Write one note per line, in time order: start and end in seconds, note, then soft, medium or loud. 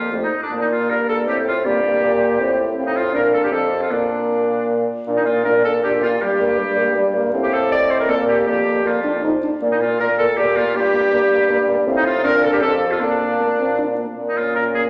0.00 0.12 F2 soft
0.00 0.13 A#3 soft
0.00 0.13 F4 soft
0.00 0.14 F4 soft
0.00 0.15 D5 soft
0.13 0.22 F2 soft
0.13 0.22 A3 soft
0.13 0.33 C5 soft
0.23 0.41 D#4 soft
0.23 0.32 D#4 soft
0.42 0.51 D4 soft
0.42 0.61 D4 soft
0.51 0.87 A#2 soft
0.51 1.29 A#3 soft
0.51 0.87 D5 soft
0.61 0.66 D#4 soft
0.71 0.89 F4 soft
0.71 0.91 F4 soft
0.89 1.29 G2 soft
0.89 1.08 A#4 soft
0.89 1.08 A#4 medium
0.89 1.39 D5 soft
1.09 1.17 A4 medium
1.09 1.17 A4 soft
1.27 1.64 A2 soft
1.27 1.67 C4 soft
1.27 1.36 G4 medium
1.27 1.37 G4 medium
1.47 1.67 F4 medium
1.47 1.56 F4 medium
1.65 2.02 G2 medium
1.65 1.83 A#3 soft
1.65 2.59 G4 medium
1.65 2.58 G4 medium
1.65 2.42 D5 soft
1.84 2.41 A#3 medium
2.02 2.39 A#2 medium
2.39 2.77 A2 medium
2.39 2.76 C4 soft
2.39 2.77 C5 soft
2.77 3.16 A2 medium
2.77 3.16 C4 soft
2.77 3.12 F5 medium
2.87 2.98 D#4 medium
2.87 2.91 D#4 medium
2.96 3.14 F4 soft
2.96 3.14 F4 medium
3.14 3.54 A#2 medium
3.14 3.51 D4 soft
3.14 3.35 A#4 medium
3.14 3.23 A#4 medium
3.14 3.53 F5 soft
3.33 3.43 A4 medium
3.33 3.38 A4 medium
3.43 3.54 G4 soft
3.43 3.48 G4 medium
3.52 3.90 F2 soft
3.52 3.92 C4 soft
3.52 3.83 A4 medium
3.52 3.82 A4 medium
3.52 3.90 F5 soft
3.81 3.93 F4 soft
3.91 4.86 A#2 soft
3.91 4.88 A#3 soft
3.91 4.68 D4 soft
3.91 4.69 D4 soft
3.91 4.86 F5 soft
5.07 5.41 A#2 medium
5.07 5.27 D4 soft
5.07 5.27 D5 soft
5.16 5.25 D#4 soft
5.16 5.27 D#4 medium
5.25 5.46 A#3 soft
5.25 5.43 F4 soft
5.25 5.45 F4 medium
5.25 5.47 F5 soft
5.44 5.79 A#2 medium
5.44 5.66 D4 soft
5.44 5.63 A#4 medium
5.44 5.64 A#4 medium
5.44 5.66 D5 soft
5.64 5.83 A#3 soft
5.64 5.73 A4 medium
5.64 5.82 F5 soft
5.82 6.17 A#2 medium
5.82 6.05 D4 soft
5.82 6.02 G4 medium
5.82 5.92 G4 medium
5.82 6.03 D5 soft
6.02 6.21 A#3 soft
6.02 6.11 F4 medium
6.02 6.23 F4 medium
6.02 6.20 F5 soft
6.21 6.54 G2 medium
6.21 6.42 G3 soft
6.21 7.13 G4 medium
6.21 7.15 G4 medium
6.21 6.41 D5 soft
6.40 6.61 A#3 soft
6.40 6.59 A#4 soft
6.58 6.92 G2 medium
6.58 6.80 G3 soft
6.58 6.78 D5 soft
6.77 6.97 A#3 soft
6.77 6.95 A#4 soft
6.96 7.29 G2 medium
6.96 7.17 G3 medium
6.96 7.16 D5 medium
7.14 7.33 A#3 medium
7.14 7.33 A#4 medium
7.33 8.11 A2 medium
7.33 8.11 C4 medium
7.33 7.69 F5 medium
7.43 7.55 G4 medium
7.43 7.48 G4 medium
7.53 7.71 A4 medium
7.71 7.92 D5 medium
7.71 8.11 D#5 medium
7.90 7.99 C5 medium
8.00 8.09 A#4 medium
8.00 8.08 A#4 medium
8.08 8.49 A#2 medium
8.08 8.47 A#3 medium
8.08 8.17 A4 medium
8.08 8.18 A4 medium
8.08 8.46 D5 medium
8.27 8.46 G4 medium
8.27 8.37 G4 medium
8.47 9.23 F2 medium
8.47 8.85 A#3 soft
8.47 8.87 G4 medium
8.47 8.89 G4 medium
8.47 8.85 D5 soft
8.85 9.03 A#3 medium
8.85 9.24 F4 medium
8.85 9.25 F4 soft
8.85 9.25 D5 soft
9.04 9.13 D4 medium
9.24 9.32 F2 soft
9.24 9.32 D#4 medium
9.24 9.43 C5 soft
9.43 9.52 D4 medium
9.62 9.95 A#2 medium
9.62 9.71 A#3 soft
9.62 9.68 D5 soft
9.71 9.76 D#4 medium
9.71 9.83 D#4 medium
9.81 9.90 A#3 soft
9.81 9.99 F4 soft
9.81 9.99 F4 medium
9.81 9.87 D5 soft
9.99 10.33 A#2 medium
9.99 10.09 A#3 soft
9.99 10.18 A#4 medium
9.99 10.08 A#4 medium
9.99 10.06 D5 soft
10.18 10.28 A#3 soft
10.18 10.27 A4 medium
10.18 10.39 A4 medium
10.18 10.25 D5 soft
10.37 10.71 A#2 medium
10.37 10.46 A#3 soft
10.37 10.58 G4 medium
10.37 10.43 D5 medium
10.56 10.65 A#3 medium
10.56 10.77 F4 medium
10.56 10.75 F4 medium
10.56 10.63 D5 medium
10.74 11.08 G2 medium
10.74 10.83 A#3 medium
10.74 11.66 G4 medium
10.74 11.69 G4 medium
10.74 10.83 D5 medium
10.94 11.02 A#3 medium
10.94 11.00 D5 medium
11.12 11.45 G2 medium
11.12 11.21 A#3 medium
11.12 11.19 D5 medium
11.31 11.39 A#3 medium
11.31 11.38 D5 medium
11.49 11.82 G2 medium
11.49 11.58 A#3 medium
11.49 11.55 D5 medium
11.68 11.77 A#3 medium
11.68 11.75 D5 medium
11.86 12.26 A2 medium
11.86 12.26 C4 medium
11.86 12.22 F5 medium
11.96 12.05 D#4 medium
11.96 12.07 D#4 medium
12.05 12.23 F4 medium
12.05 12.27 F4 medium
12.24 12.64 A#2 medium
12.24 12.64 D4 medium
12.24 12.45 A#4 medium
12.24 12.44 A#4 medium
12.24 12.62 F5 medium
12.43 12.52 A4 medium
12.53 12.63 G4 medium
12.53 12.57 G4 medium
12.61 13.00 F2 medium
12.61 13.03 C4 medium
12.61 12.93 A4 medium
12.61 12.75 A4 medium
12.61 13.00 F5 medium
12.91 13.02 F4 medium
12.91 12.96 F4 medium
13.00 13.97 A#2 soft
13.00 13.36 A#3 soft
13.00 13.79 D4 medium
13.00 13.78 D4 soft
13.00 13.97 F5 soft
13.41 13.49 A#3 soft
13.59 13.68 C4 soft
13.79 13.88 D4 medium
13.98 14.07 A#3 soft
14.18 14.51 A#2 soft
14.28 14.38 D#4 soft
14.36 14.74 A#3 soft
14.36 14.75 C#4 soft
14.36 14.55 F4 soft
14.36 14.74 C#5 soft
14.55 14.89 A#2 soft
14.55 14.64 A#4 soft
14.74 14.90 A#3 soft
14.74 14.90 C#4 soft
14.74 14.83 G#4 soft
14.74 14.90 C#5 soft